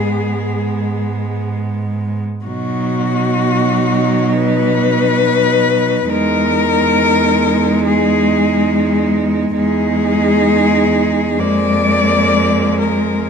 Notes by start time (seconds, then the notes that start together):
Already playing: G#2 G#3 B3 G#4
2.45 B2 F#3 D#4 F#4
4.33 B4
6.09 E2 G#3 D#4 A#4
7.87 G#4
9.55 E2 G#3 D#4 G#4
11.39 F2 G#3 A#3 D5
12.80 A#4